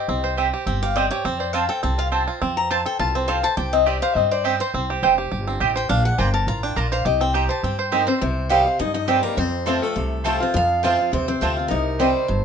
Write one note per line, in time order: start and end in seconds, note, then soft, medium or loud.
0.00 0.35 G4 medium
0.00 0.23 C5 medium
0.00 0.34 D#5 medium
0.08 0.50 C2 medium
0.08 0.38 C4 medium
0.24 1.40 C5 medium
0.37 0.47 C4 medium
0.37 0.66 C4 medium
0.37 0.47 G4 loud
0.37 0.47 D#5 medium
0.37 0.47 G5 medium
0.53 0.81 G4 medium
0.66 1.08 G1 medium
0.66 0.96 C4 medium
0.66 0.82 G5 medium
0.83 1.10 G4 medium
0.83 0.96 F5 loud
0.96 1.05 C4 medium
0.96 1.25 C4 medium
0.96 1.05 G4 loud
0.96 1.10 D5 loud
0.96 1.06 D#5 loud
0.96 1.06 G5 loud
1.11 1.25 G4 medium
1.11 1.25 C#5 loud
1.25 1.66 F2 medium
1.25 1.53 C4 medium
1.25 1.40 C5 medium
1.40 2.70 C5 medium
1.40 1.53 D5 loud
1.53 1.63 C4 medium
1.53 1.82 C4 medium
1.53 1.64 F4 medium
1.53 1.64 C5 loud
1.53 1.69 F5 loud
1.53 1.64 A5 loud
1.69 2.10 A4 medium
1.69 1.82 G5 medium
1.83 2.25 C2 medium
1.83 2.12 C4 medium
1.83 1.98 A5 medium
1.98 2.26 F4 medium
1.98 2.07 F5 loud
2.12 2.21 C4 medium
2.12 2.41 C4 medium
2.12 2.22 F4 medium
2.12 2.22 C5 loud
2.12 2.22 A5 loud
2.28 2.68 F4 medium
2.42 2.83 F2 medium
2.42 3.15 C4 medium
2.57 2.70 A#5 loud
2.70 2.80 C4 medium
2.70 2.80 F4 loud
2.70 3.43 C5 medium
2.70 2.80 C5 medium
2.70 2.86 A5 loud
2.70 2.80 A5 loud
2.86 3.26 A4 medium
2.86 2.99 G5 loud
2.99 3.41 C2 medium
2.99 3.41 F4 medium
2.99 3.14 A5 loud
3.15 3.73 C4 medium
3.15 3.28 C5 medium
3.28 3.38 C4 medium
3.28 3.38 F4 medium
3.28 3.58 A4 medium
3.28 3.38 C5 loud
3.28 3.43 F5 loud
3.28 3.38 A5 medium
3.43 4.02 C5 medium
3.43 3.57 A5 loud
3.57 3.99 C2 medium
3.57 3.85 G4 medium
3.57 3.72 G5 medium
3.73 4.13 C4 medium
3.73 3.86 D#5 medium
3.86 3.96 C4 medium
3.86 3.96 G4 medium
3.86 4.28 G4 medium
3.86 4.01 D5 medium
3.86 3.96 D#5 loud
3.86 3.96 G5 medium
4.02 4.30 C5 medium
4.02 4.16 F5 loud
4.15 4.57 G2 medium
4.15 4.44 C4 medium
4.15 4.31 D#5 medium
4.31 4.60 C5 medium
4.31 4.45 D5 loud
4.44 4.54 C4 medium
4.44 4.73 C4 medium
4.44 4.54 G4 medium
4.44 4.59 C5 medium
4.44 4.54 D#5 loud
4.44 4.54 G5 loud
4.60 5.00 C5 loud
4.60 5.01 C5 medium
4.74 4.95 C2 medium
4.74 5.15 C4 medium
4.90 5.17 G4 medium
5.03 5.27 F1 medium
5.03 5.12 C4 medium
5.03 5.12 G4 medium
5.03 5.44 C5 medium
5.03 5.13 D#5 medium
5.03 5.13 G5 loud
5.18 5.30 G4 medium
5.31 5.57 G1 medium
5.31 5.59 G4 medium
5.47 5.87 C4 medium
5.60 5.86 A1 medium
5.60 5.70 C4 medium
5.60 5.90 G4 medium
5.60 5.70 G4 medium
5.60 5.70 D#5 loud
5.60 5.70 G5 loud
5.76 5.90 C5 medium
5.76 5.89 G5 loud
5.89 6.10 A#1 loud
5.89 6.31 D4 medium
5.89 6.05 F5 loud
6.05 6.19 F#5 loud
6.18 6.43 G1 medium
6.18 6.28 A#3 medium
6.18 6.28 F4 medium
6.18 6.60 C5 medium
6.18 6.28 D5 medium
6.18 6.33 G5 medium
6.18 6.29 A#5 loud
6.34 6.74 A#4 medium
6.34 6.47 A5 loud
6.47 6.72 A1 medium
6.47 6.89 F4 medium
6.47 6.63 A#5 loud
6.63 7.03 D4 medium
6.63 6.77 G5 loud
6.76 7.01 A#1 medium
6.76 6.86 A#3 medium
6.76 6.86 F4 loud
6.76 7.06 A#4 medium
6.76 6.86 D5 loud
6.76 6.92 A5 loud
6.76 6.86 A#5 loud
6.92 7.06 C5 medium
6.92 7.05 F5 loud
7.05 7.47 C2 medium
7.05 7.33 G4 medium
7.05 7.21 D#5 medium
7.21 7.61 C4 medium
7.21 7.35 G5 loud
7.34 7.44 C4 medium
7.34 7.44 G4 medium
7.34 7.76 G4 medium
7.34 7.44 D#5 loud
7.34 7.44 G5 loud
7.34 7.50 A#5 loud
7.49 7.78 C5 medium
7.49 7.64 A5 loud
7.63 8.05 G2 medium
7.63 7.91 C4 medium
7.63 7.91 G5 medium
7.79 8.07 C5 medium
7.92 8.02 C4 medium
7.92 8.22 C4 medium
7.92 8.07 D#4 medium
7.92 8.02 G4 medium
7.92 8.08 A#4 loud
7.92 8.02 D#5 loud
7.92 8.02 G5 loud
8.07 8.20 C4 medium
8.07 8.20 C5 medium
8.07 8.22 C5 medium
8.21 8.63 C2 medium
8.21 8.77 C3 medium
8.21 8.49 C4 medium
8.21 8.49 C5 medium
8.49 8.65 D#3 medium
8.49 8.66 G3 medium
8.49 8.60 C4 medium
8.49 8.66 C4 medium
8.49 8.60 G4 medium
8.49 8.64 G4 medium
8.49 8.78 C5 medium
8.49 8.60 D#5 medium
8.49 8.79 F5 loud
8.49 8.60 G5 medium
8.65 8.80 C4 soft
8.65 8.79 G4 medium
8.79 9.35 G2 medium
8.79 9.21 G2 medium
8.79 8.93 D#4 medium
8.79 8.93 D#5 loud
8.94 9.07 D#4 medium
8.94 9.08 D#5 loud
9.08 9.36 D#3 medium
9.08 9.37 G3 medium
9.08 9.18 C4 medium
9.08 9.23 C4 medium
9.08 9.37 C4 medium
9.08 9.18 G4 medium
9.08 9.37 G4 medium
9.08 9.22 C5 medium
9.08 9.18 D#5 loud
9.08 9.18 G5 loud
9.23 9.37 A#3 medium
9.23 9.37 A#4 medium
9.37 9.79 F2 medium
9.37 9.93 F2 medium
9.37 9.66 C4 medium
9.37 9.66 C5 loud
9.66 9.94 F3 medium
9.66 9.95 A3 medium
9.66 9.76 C4 medium
9.66 9.82 C4 medium
9.66 9.95 C4 medium
9.66 9.76 F4 medium
9.66 9.95 F4 medium
9.66 9.76 C5 loud
9.66 9.83 C5 medium
9.66 9.76 A5 medium
9.82 10.24 A3 medium
9.82 10.25 A4 loud
9.96 10.37 C2 medium
9.96 10.51 C3 medium
10.24 10.40 F3 medium
10.24 10.40 A3 medium
10.24 10.34 C4 medium
10.24 10.41 C4 medium
10.24 10.34 F4 medium
10.24 10.39 F4 loud
10.24 10.41 A4 medium
10.24 10.34 C5 loud
10.24 10.35 A5 loud
10.40 10.54 C4 medium
10.40 10.55 C4 medium
10.40 10.54 F4 medium
10.40 10.56 C5 medium
10.54 11.09 F2 medium
10.54 10.96 F2 medium
10.54 10.81 F4 medium
10.54 10.83 F5 loud
10.83 10.98 F3 medium
10.83 10.98 A3 medium
10.83 10.93 C4 medium
10.83 10.99 C4 medium
10.83 10.93 F4 medium
10.83 11.11 F4 medium
10.83 10.97 F4 loud
10.83 10.93 C5 medium
10.83 11.13 F5 loud
10.83 10.93 A5 loud
10.99 11.13 C4 soft
10.99 11.12 F4 medium
11.12 11.37 D#2 medium
11.12 11.68 C3 medium
11.12 11.26 C4 medium
11.12 11.27 C5 loud
11.28 11.67 C4 medium
11.28 11.68 C5 loud
11.41 11.66 D2 medium
11.41 11.56 F3 medium
11.41 11.56 A3 medium
11.41 11.51 C4 medium
11.41 11.57 C4 loud
11.41 11.51 F4 medium
11.41 11.55 F4 loud
11.41 11.51 C5 loud
11.41 11.51 A5 loud
11.57 11.71 C4 medium
11.57 11.70 F4 medium
11.68 12.12 C2 medium
11.68 12.26 C3 medium
11.68 11.97 D#4 medium
11.68 11.99 A#4 medium
11.99 12.27 D#3 medium
11.99 12.27 G3 medium
11.99 12.09 C4 medium
11.99 12.45 C4 medium
11.99 12.28 C4 medium
11.99 12.09 G4 medium
11.99 12.28 G4 medium
11.99 12.45 C5 loud
11.99 12.09 D#5 loud
11.99 12.09 G5 medium
12.28 12.45 G1 medium
12.28 12.45 G2 medium